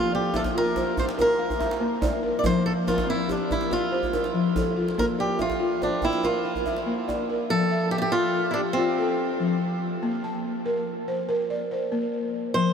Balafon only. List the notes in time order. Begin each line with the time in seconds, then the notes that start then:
Already playing: A#3 F4 A4
0.12 D5
0.34 E5
0.55 F4
0.76 C5
1.18 A#4
1.39 F5
1.59 E5
1.80 A#3
2.01 D5
2.23 A#4
2.44 F3
2.87 A#4
3.07 C4
3.28 G4
3.49 D5
3.70 F4
3.92 C5
4.13 A#4
4.34 F3
4.56 A4
4.76 F4
4.98 A#3
5.18 D5
5.39 E5
5.60 F4
5.81 C5
6.03 G5
6.24 A#4
6.45 F5
6.66 E5
6.86 A#3
7.08 D5
7.29 A#4
7.50 F3
7.71 E5
8.13 F4
8.56 G4
8.77 F4
8.98 A4
9.40 F3
10.03 A#3
10.24 A5
10.66 A#4
11.08 C5
11.29 A#4
11.50 D5
11.71 C5
11.92 A#3
12.55 F3